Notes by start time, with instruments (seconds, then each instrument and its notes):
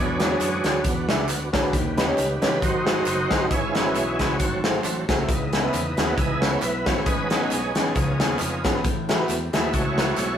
Already playing: fingered electric bass E2, tonewheel organ D3 F#3 G#3 C#4 D4 G#4 B4, upright piano E3
0.20 upright piano D4 F#4 G#4 C#5, snare, closed hi-hat, tambourine
0.31 upright piano D4 F#4 G#4 C#5
0.40 fingered electric bass F#2, tonewheel organ B3 D4 F#4, clap, closed hi-hat, tambourine
0.64 fingered electric bass D2, tonewheel organ D3 F#3 G#3 C#4, upright piano D4 F#4 G#4 C#5, snare, closed hi-hat, tambourine
0.84 fingered electric bass E2, kick, closed hi-hat, tambourine
1.08 fingered electric bass C#2, upright piano D4 F#4 G#4 E5, snare, closed hi-hat, tambourine
1.29 fingered electric bass D2, clap, closed hi-hat, tambourine
1.53 fingered electric bass D2, upright piano D4 F#4 G#4 C#5, kick, snare, closed hi-hat, tambourine
1.63 upright piano D4 F#4 G#4 B4
1.72 fingered electric bass D#2, tonewheel organ C#3 G3 B3, upright piano D#3, kick, closed hi-hat, tambourine
1.97 upright piano C#4 D#4 G4 B4, snare, closed hi-hat, tambourine
2.07 upright piano C#4 D#4 G4 C#5
2.18 fingered electric bass C#2, clap, closed hi-hat, tambourine
2.42 fingered electric bass A1, upright piano C#4 D#4 G4 C#5, tonewheel organ B4, snare, closed hi-hat, tambourine
2.61 fingered electric bass G#1, upright piano G#2, tonewheel organ D#3 F#3 C4 D#4 F#4 C5, kick, closed hi-hat, tambourine
2.86 upright piano C4 D#4 F#4 G#4, snare, closed hi-hat, tambourine
3.06 fingered electric bass F#1, clap, closed hi-hat, tambourine
3.30 fingered electric bass G1, upright piano C4 D#4 F#4 G#4, kick, snare, closed hi-hat, tambourine
3.41 upright piano C4 D#4 F#4 G#4
3.50 fingered electric bass G#1, upright piano G#2, tonewheel organ E3 G#3 C#4 E4 G#4 C#5, kick, closed hi-hat, tambourine
3.68 tonewheel organ F4
3.75 upright piano G#3 C#4 E4 G#4, tonewheel organ C#4 F#4, snare, closed hi-hat, tambourine
3.85 upright piano G#3 C#4 E4 B4
3.95 fingered electric bass B1, clap, closed hi-hat, tambourine
4.19 fingered electric bass C#2, upright piano G#3 C#4 E4 B4, kick, snare, closed hi-hat, tambourine
4.39 fingered electric bass G#1, upright piano G#2, tonewheel organ F#3 A3 C4, kick, closed hi-hat, tambourine
4.64 upright piano A3 C4 F#4 G#4, snare, closed hi-hat, tambourine
4.84 fingered electric bass A1, clap, closed hi-hat, tambourine
5.08 fingered electric bass C#2, upright piano A3 C4 F#4 G#4, kick, snare, closed hi-hat, tambourine
5.19 upright piano A3 C4 F#4 A4
5.27 fingered electric bass C#2, upright piano C#3, tonewheel organ E3 B3 D#4, kick, closed hi-hat, tambourine
5.53 upright piano B3 C#4 E4 G#4, snare, closed hi-hat, tambourine
5.63 upright piano B3 C#4 E4 B4
5.73 fingered electric bass E2, clap, closed hi-hat, tambourine
5.97 fingered electric bass D#2, upright piano B3 C#4 E4 G#4, tonewheel organ F#4, snare, closed hi-hat, tambourine
6.16 fingered electric bass C#2, tonewheel organ E3 B3 D#4 E4 G#4, kick, closed hi-hat, tambourine
6.41 upright piano B3 C#4 E4 G#4, tonewheel organ C#5, snare, closed hi-hat, tambourine
6.62 fingered electric bass B1, tonewheel organ B4, clap, closed hi-hat, tambourine
6.86 fingered electric bass G#1, upright piano B3 C#4 E4 F#4, tonewheel organ C#5, kick, snare, closed hi-hat, tambourine
6.97 upright piano B3 C#4 E4 G#4
7.05 fingered electric bass A1, upright piano A2, tonewheel organ G#3 B3 C#4 D#4 G#4 B4, kick, closed hi-hat, tambourine
7.30 upright piano B3 C#4 D#4 G#4, snare, closed hi-hat, tambourine
7.41 upright piano B3 C#4 D#4 G#4
7.51 fingered electric bass B1, tonewheel organ B3 C#4 G#4, clap, closed hi-hat, tambourine
7.75 fingered electric bass A1, upright piano B3 C#4 D#4 G#4, snare, closed hi-hat, tambourine
7.95 fingered electric bass C#2, upright piano C#3, tonewheel organ F3 B3 D#4, kick, closed hi-hat, tambourine
8.20 fingered electric bass D#2, upright piano B3 C#4 F4 G#4, snare, closed hi-hat, tambourine
8.39 fingered electric bass F2, clap, closed hi-hat, tambourine
8.64 fingered electric bass G#1, upright piano B3 C#4 F4 G#4, kick, snare, closed hi-hat, tambourine
8.75 upright piano B3 C#4 F4 B4
8.84 fingered electric bass A1, upright piano A2, kick, closed hi-hat, tambourine
9.09 upright piano A3 E4 F#4 G#4, snare, closed hi-hat, tambourine
9.19 upright piano A3 E4 F#4 B4
9.29 fingered electric bass E2, clap, closed hi-hat, tambourine
9.53 fingered electric bass D#2, tonewheel organ G#3 A3 E4 B4, upright piano A3 E4 F#4 G#4, snare, closed hi-hat, tambourine
9.73 fingered electric bass C#2, tonewheel organ E4 F#4 C#5, kick, closed hi-hat, tambourine
9.98 upright piano A3 E4 F#4 B4, snare, closed hi-hat, tambourine
10.17 fingered electric bass B1, clap, closed hi-hat, tambourine